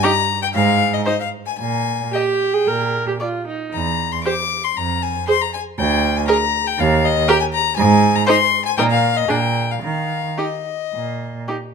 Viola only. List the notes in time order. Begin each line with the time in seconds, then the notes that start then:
0.04 D#4
1.06 D#4
2.13 G4
2.54 G#4
2.68 A#4
3.08 G4
3.21 F4
3.48 D#4
4.26 G4
5.27 G#4
6.28 G#4
7.28 G4
8.29 D#4
8.79 D#4
9.29 D4
10.38 D#4
11.48 D#4